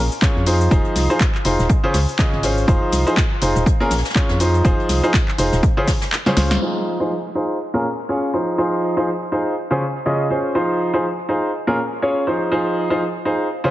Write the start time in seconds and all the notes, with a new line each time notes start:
0.12 shaker
0.22 C#4 F4 G#4 C#5, kick, snare, clap, closed hi-hat, shaker
0.36 F2, snare
0.46 F3 D#4 F4 G#4 C5, closed hi-hat, open hi-hat, shaker
0.61 shaker
0.71 F1 F3 D#4 F4 G#4 C5, kick, closed hi-hat, shaker
0.84 closed hi-hat
0.96 C2, snare, closed hi-hat, open hi-hat, shaker
1.10 F3 D#4 F4 G#4 C5, shaker
1.20 kick, snare, clap, closed hi-hat, shaker
1.35 clap, closed hi-hat
1.45 F1 D#4 F4 G#4 C5, closed hi-hat, open hi-hat, shaker
1.59 D#1, snare, shaker
1.69 kick, closed hi-hat, shaker
1.84 C#3 C#4 F4 G#4 C5
1.94 C#2, snare, closed hi-hat, open hi-hat, shaker
2.09 shaker
2.18 C#3 C#4 F4 G#4 D#5, kick, snare, clap, closed hi-hat, shaker
2.33 G#1, snare
2.43 C#4 F4 G#4 C5, snare, closed hi-hat, open hi-hat, shaker
2.57 closed hi-hat, shaker
2.68 F1 F3 D#4 F4 G#4 C5, kick, closed hi-hat, shaker
2.92 C2, snare, closed hi-hat, open hi-hat, shaker
3.07 F3 D#4 F4 G#4 C5, shaker
3.16 kick, snare, clap, closed hi-hat, shaker
3.41 F1 D#4 F4 G#4 C5, closed hi-hat, open hi-hat, shaker
3.55 D#1, snare, shaker
3.66 kick, closed hi-hat, shaker
3.80 A#2 C#4 F4 G#4 A#4, snare
3.91 A#1, snare, closed hi-hat, open hi-hat, shaker
3.97 snare, closed hi-hat
4.05 snare, closed hi-hat, shaker
4.10 snare, closed hi-hat
4.15 C#4 F4 G#4 C#5, kick, clap, shaker
4.29 F2, snare, closed hi-hat
4.40 F3 D#4 F4 G#4 C5, open hi-hat, shaker
4.54 closed hi-hat, shaker
4.65 F1 F3 D#4 F4 G#4 C5, kick, closed hi-hat, shaker
4.80 closed hi-hat
4.89 C2, snare, closed hi-hat, open hi-hat, shaker
5.03 F3 D#4 F4 G#4 C5, shaker
5.14 kick, snare, clap, closed hi-hat, shaker
5.27 clap, closed hi-hat
5.38 F1 D#4 F4 G#4 C5, closed hi-hat, open hi-hat, shaker
5.52 D#1, snare, shaker
5.62 kick, closed hi-hat, shaker
5.77 C#3 C#4 F4 G#4 C5
5.88 kick, snare, closed hi-hat, open hi-hat, shaker
6.01 snare, closed hi-hat, shaker
6.12 snare, clap, closed hi-hat, shaker
6.26 C#3 C#4 F4 G#4 C5, snare
6.37 C#2 C#4 F4 G#4 C5, snare, closed hi-hat, open hi-hat, shaker
6.50 snare, closed hi-hat, shaker
6.61 F3 D#4 F4 G#4 C5, crash
7.00 F3 D#4 F4 G#4 C5
7.35 D#4 F4 G#4 C5
7.74 A#2 C#4 F4 G#4 A#4
8.09 C#4 F4 G#4 C#5
8.34 F3 D#4 F4 G#4 C5
8.58 F3 D#4 F4 G#4 C5
8.97 F3 D#4 F4 G#4 C5
9.32 D#4 F4 G#4 C5
9.71 C#3 C#4 F4 G#4 C5
10.06 C#3 C#4 F4 G#4 D#5
10.30 C#4 F4 G#4 C5
10.55 F3 D#4 F4 G#4 C5
10.94 F3 D#4 F4 G#4 C5
11.29 D#4 F4 G#4 C5
11.67 A#2 C#4 F4 G#4 A#4
12.02 C#4 F4 G#4 C#5
12.27 F3 D#4 F4 G#4 C5
12.52 F3 D#4 F4 G#4 C5
12.90 F3 D#4 F4 G#4 C5
13.25 D#4 F4 G#4 C5
13.64 C#3 C#4 F4 G#4 C5